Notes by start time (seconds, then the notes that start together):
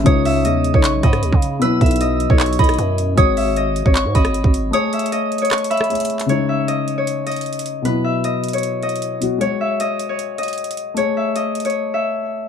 Already playing: E5
0.03 C#2 C#3 G#3 C#5 D#6, kick, closed hi-hat
0.08 D#4
0.25 E5, open hi-hat
0.45 E2 D#5, closed hi-hat
0.64 closed hi-hat
0.74 B1 C#5, kick
0.84 C#6, clap, closed hi-hat
1.03 G#2 D#5 B5, kick, closed hi-hat
1.13 cross-stick, closed hi-hat
1.23 D#2, closed hi-hat
1.33 C#3, kick
1.42 closed hi-hat
1.59 B2 F#3 B4 E6, closed hi-hat
1.64 E4
1.81 B1 E5, kick, closed hi-hat
1.86 closed hi-hat
1.91 closed hi-hat
1.96 closed hi-hat
2.01 D#5, closed hi-hat
2.20 closed hi-hat
2.30 B1 C#5, kick
2.40 C#6, clap, closed hi-hat
2.46 closed hi-hat
2.53 closed hi-hat
2.59 B1 D#5 B5, kick, closed hi-hat
2.64 closed hi-hat
2.69 cross-stick, closed hi-hat
2.74 closed hi-hat
2.79 F#2, closed hi-hat
2.98 closed hi-hat
3.15 G#1 G#3 F#4 C#5 D#6, kick, closed hi-hat
3.20 C#5
3.37 E5, open hi-hat
3.56 D#5, closed hi-hat
3.76 closed hi-hat
3.86 G#1 C#5, kick
3.95 C#6, clap, closed hi-hat
4.05 G#2
4.15 G#1 D#5 B5, kick, closed hi-hat
4.25 cross-stick, closed hi-hat
4.34 closed hi-hat
4.44 G#1, kick
4.54 closed hi-hat
4.71 A3 G#4 C#5 D#6, closed hi-hat
4.76 C#5
4.93 E5, closed hi-hat
4.99 closed hi-hat
5.06 closed hi-hat
5.12 D#5, closed hi-hat
5.32 closed hi-hat
5.38 C#5, closed hi-hat
5.45 closed hi-hat
5.51 C#6, cross-stick, clap, closed hi-hat
5.58 closed hi-hat
5.64 closed hi-hat
5.70 E5 B5, closed hi-hat
5.77 cross-stick, closed hi-hat
5.84 closed hi-hat
5.89 A3 G#4 C#5, closed hi-hat
5.95 closed hi-hat
6.00 closed hi-hat
6.05 closed hi-hat
6.10 closed hi-hat
6.19 clap, closed hi-hat
6.26 C#3 G#3 C#5, closed hi-hat
6.31 D#4
6.49 E5
6.68 D#5, closed hi-hat
6.88 closed hi-hat
6.98 C#5
7.07 closed hi-hat
7.27 D#5, closed hi-hat
7.32 closed hi-hat
7.36 closed hi-hat
7.41 closed hi-hat
7.46 closed hi-hat
7.53 closed hi-hat
7.59 closed hi-hat
7.66 closed hi-hat
7.82 B2 F#3 B4, closed hi-hat
7.87 E4
8.04 E5
8.24 D#5, closed hi-hat
8.44 closed hi-hat
8.48 closed hi-hat
8.53 C#5, closed hi-hat
8.58 closed hi-hat
8.63 closed hi-hat
8.83 D#5, closed hi-hat
8.89 closed hi-hat
8.96 closed hi-hat
9.02 closed hi-hat
9.21 B2 F#3 F#4, closed hi-hat
9.38 G#3 F#4 C#5, closed hi-hat
9.43 C#5
9.61 E5
9.80 D#5, closed hi-hat
9.99 closed hi-hat
10.09 C#5
10.19 closed hi-hat
10.38 D#5, closed hi-hat
10.43 closed hi-hat
10.48 closed hi-hat
10.53 closed hi-hat
10.58 closed hi-hat
10.64 closed hi-hat
10.71 closed hi-hat
10.77 closed hi-hat
10.94 A3 G#4 C#5, closed hi-hat
10.99 C#5
11.17 E5
11.36 D#5, closed hi-hat
11.55 closed hi-hat
11.60 closed hi-hat
11.65 C#5, closed hi-hat
11.70 closed hi-hat
11.94 E5